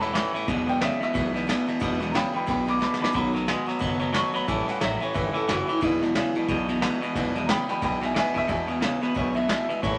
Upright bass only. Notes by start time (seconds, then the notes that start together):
Already playing: E1
0.34 muted upright bass stroke
0.48 E1
1.02 muted upright bass stroke
1.16 B1
1.68 muted upright bass stroke
1.82 E1
2.35 muted upright bass stroke
2.48 B1
3.01 muted upright bass stroke
3.15 B1
3.69 muted upright bass stroke
3.82 F#1
4.36 muted upright bass stroke
4.49 A1
4.82 A1
5.16 G1
5.36 muted upright bass stroke
5.49 F#1
5.69 muted upright bass stroke
5.82 E1
6.36 muted upright bass stroke
6.49 B1
7.02 muted upright bass stroke
7.16 E1
7.69 muted upright bass stroke
7.83 B1
8.36 muted upright bass stroke
8.50 E2
9.04 muted upright bass stroke
9.17 B1
9.84 A1